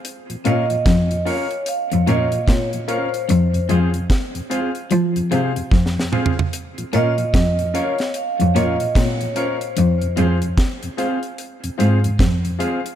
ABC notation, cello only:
X:1
M:4/4
L:1/16
Q:"Swing 16ths" 1/4=74
K:Bbm
V:1 name="Cello" clef=bass
z2 B,,2 F,,2 z3 F,, B,,2 B,,4 | F,,2 F,, z4 z F,2 C,2 F,,2 z2 | z2 B,,2 F,,2 z3 F,, B,,2 B,,4 | F,,2 F,, z6 z A,,2 F,,2 z2 |]